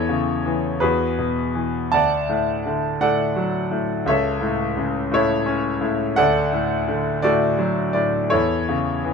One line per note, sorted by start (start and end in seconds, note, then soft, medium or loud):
0.00 0.79 E2 medium
0.00 0.79 E4 soft
0.00 0.78 A4 soft
0.00 0.41 C#5 medium
0.09 0.80 C#3 soft
0.46 0.81 E3 soft
0.80 1.89 E2 soft
0.80 1.89 F#4 soft
0.80 1.88 G#4 soft
0.80 1.60 B4 medium
1.19 1.90 B2 soft
1.55 1.91 E3 soft
1.92 4.03 D2 soft
1.92 2.98 D5 soft
1.92 2.98 F#5 medium
1.92 3.04 A5 medium
2.29 2.99 A2 soft
2.66 4.03 D3 soft
3.01 3.70 A2 soft
3.01 4.04 A4 soft
3.01 4.03 D5 medium
3.01 4.03 F#5 medium
3.36 4.05 F#3 soft
3.71 4.06 A2 soft
4.06 6.13 C#2 soft
4.06 5.09 A4 soft
4.06 5.09 C#5 soft
4.06 4.73 E5 medium
4.41 5.10 A2 soft
4.77 6.14 C#3 soft
5.12 5.80 A2 soft
5.12 6.15 E4 soft
5.12 6.15 A4 soft
5.12 5.88 C#5 medium
5.46 6.15 C#4 soft
5.81 6.16 A2 soft
6.16 8.28 D2 medium
6.16 7.20 A4 medium
6.16 7.20 D5 medium
6.16 7.27 F#5 medium
6.53 7.22 A2 soft
6.88 8.27 D3 soft
7.22 7.93 A2 soft
7.22 8.28 F#4 soft
7.22 8.28 A4 medium
7.22 7.92 D5 medium
7.58 8.29 F#3 soft
7.93 8.30 A2 soft
7.93 8.31 D5 medium
8.30 9.13 E2 medium
8.30 9.13 E4 soft
8.30 9.13 A4 soft
8.30 9.13 C#5 medium
8.69 9.13 C#3 soft
9.04 9.13 E3 soft